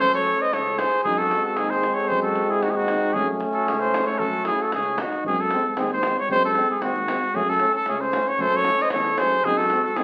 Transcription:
Already playing: euphonium A3, trombone C#4
0.00 tuba F#2, trumpet A4 C5, davul low
0.13 trumpet A4 C#5, davul high
0.27 davul high
0.40 trumpet C5 D#5
0.53 tuba C#2, trumpet A4 C#5, davul high
0.66 davul high
0.78 trumpet G#4 C5, davul high
1.04 tuba F#2, euphonium G#3, trombone C4, trumpet D#4 G#4, davul low
1.18 trumpet F#4 A4
1.31 davul high
1.45 trumpet F#4 A4
1.56 tuba D#2, trumpet D#4 G#4, davul high
1.70 trumpet G#4 C5
1.83 davul high
1.94 trumpet A4 C#5
2.08 tuba F#2, trumpet G#4 C5, davul low
2.22 trumpet F#4 A4
2.36 davul high
2.50 trumpet E4 G#4
2.62 tuba D#2, trumpet D#4 F#4, davul high
2.69 trumpet E4 G#4
2.76 trumpet D#4 F#4
2.88 davul high
3.13 tuba F#2, euphonium A3, trumpet C#4 G#4, trombone C#4, davul low
3.41 davul high
3.54 trumpet F#4 A4
3.67 tuba C#2, trumpet C#4 G#4, davul high
3.79 trumpet G#4 C5
3.94 davul high
4.07 trumpet A4 C#5
4.18 tuba F#2, trumpet F#4 A4, davul low
4.33 davul high
4.45 trumpet E4 G#4, davul high
4.60 trumpet F#4 A4, davul high
4.72 tuba C#2, trumpet C#4 G#4, davul high
4.98 trumpet D#4 F#4, davul high
5.13 davul high
5.24 tuba F#2, euphonium G#3, trombone C4, trumpet G#4, davul low
5.41 trumpet A4
5.50 euphonium G#3, trombone C4, davul high
5.68 trumpet A4
5.77 tuba D#2, euphonium G#3, trombone C4, trumpet G#4, davul high
5.93 trumpet C5
6.03 euphonium G#3, trombone C4, davul high
6.19 trumpet C#5
6.29 tuba F#2, euphonium G#3, trombone C4, trumpet C5, davul low
6.45 trumpet A4
6.55 euphonium G#3, trombone C4, davul high
6.71 trumpet G#4
6.81 tuba D#2, euphonium G#3, trombone C4, trumpet F#4, davul high
7.07 euphonium G#3, trombone C4, davul high
7.34 tuba F#2, euphonium A3, trombone C#4, trumpet G#4, davul low
7.49 trumpet A4
7.60 euphonium A3, trombone C#4, davul high
7.75 trumpet A4
7.86 tuba C#2, euphonium A3, trombone C#4, trumpet G#4, davul high
8.01 trumpet C5
8.13 euphonium A3, trombone C#4, davul high
8.28 trumpet C#5
8.38 tuba F#2, euphonium A3, trombone C#4, trumpet A4 C5, davul low
8.52 trumpet A4, davul high
8.56 trumpet C#5
8.64 euphonium A3, trombone C#4, davul high
8.78 trumpet C5 D#5, davul high
8.90 tuba E2, euphonium A3, trombone C#4, trumpet A4 C#5, davul high
9.06 davul high
9.17 tuba F#2, euphonium A3, trombone C#4, trumpet G#4 C5, davul high
9.31 davul high
9.43 tuba F#2, euphonium G#3, trombone C4, trumpet D#4 G#4, davul low
9.57 trumpet F#4 A4
9.70 euphonium G#3, trombone C4, davul high
9.84 trumpet F#4 A4
9.96 tuba D#2, euphonium G#3, trombone C4, trumpet D#4 G#4, davul high

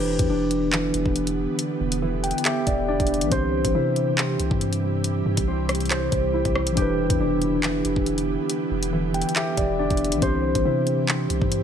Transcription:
Already playing: 808-style bass E1, ambient pad D3 B3 E4 G4, tine electric piano E3 D4 G4 B4, harp C4 E4 G4 C5
0.19 808-style bass E2, kick, closed hi-hat
0.29 808-style bass E1, harp D4
0.51 closed hi-hat
0.73 harp E3, clap
0.94 808-style bass E1, closed hi-hat
1.06 808-style bass E1, kick
1.16 closed hi-hat
1.27 closed hi-hat
1.59 closed hi-hat
1.81 808-style bass E1
1.92 closed hi-hat
2.02 harp E3
2.24 tine electric piano G5, closed hi-hat
2.31 closed hi-hat
2.38 closed hi-hat
2.45 harp G4, tine electric piano E5, clap, closed hi-hat
2.67 808-style bass E1, tine electric piano D5, kick, closed hi-hat
2.88 harp D4, tine electric piano D5
3.00 808-style bass E1, kick, closed hi-hat
3.07 closed hi-hat
3.14 closed hi-hat
3.21 808-style bass B1, closed hi-hat
3.27 tine electric piano E3 C4
3.32 808-style bass C2, ambient pad C3 G3, tine electric piano G4, harp C5, kick, closed hi-hat
3.37 tine electric piano C5
3.65 808-style bass C2, kick, closed hi-hat
3.75 808-style bass C3, harp E4
3.96 closed hi-hat
4.18 harp C4, clap
4.40 808-style bass C2, closed hi-hat
4.51 808-style bass G2, kick
4.61 closed hi-hat
4.73 closed hi-hat
5.04 closed hi-hat
5.26 808-style bass G2
5.37 808-style bass C2, kick, closed hi-hat
5.48 harp C4
5.69 cross-stick, closed hi-hat
5.75 closed hi-hat
5.80 closed hi-hat
5.86 closed hi-hat
5.90 harp C5, clap, closed hi-hat
6.12 808-style bass C2, kick, closed hi-hat
6.34 harp E4
6.45 808-style bass C2, kick, closed hi-hat
6.55 cross-stick
6.67 808-style bass B1, closed hi-hat
6.72 tine electric piano E3 D4
6.77 808-style bass E1, ambient pad D3 B3, harp G4, tine electric piano G4, kick, closed hi-hat
6.82 tine electric piano B4
7.10 808-style bass E2, kick, closed hi-hat
7.20 808-style bass E1, harp D4
7.42 closed hi-hat
7.63 harp E3, clap
7.85 808-style bass E1, closed hi-hat
7.96 808-style bass E1, kick
8.06 closed hi-hat
8.18 closed hi-hat
8.50 closed hi-hat
8.71 808-style bass E1
8.83 closed hi-hat
8.93 harp E3
9.14 tine electric piano G5, closed hi-hat
9.22 closed hi-hat
9.29 closed hi-hat
9.36 harp G4, tine electric piano E5, clap, closed hi-hat
9.57 808-style bass E1, tine electric piano D5, kick, closed hi-hat
9.79 harp D4, tine electric piano D5
9.90 808-style bass E1, kick, closed hi-hat
9.97 closed hi-hat
10.04 closed hi-hat
10.12 808-style bass B1, closed hi-hat
10.17 tine electric piano E3 C4
10.22 808-style bass C2, ambient pad C3 G3 E4 G4, tine electric piano G4, harp C5, kick, closed hi-hat
10.27 tine electric piano C5
10.55 808-style bass C2, kick, closed hi-hat
10.65 808-style bass C3, harp E4
10.87 closed hi-hat
11.09 harp C4, clap
11.30 808-style bass C2, closed hi-hat
11.42 808-style bass G2, kick
11.52 closed hi-hat

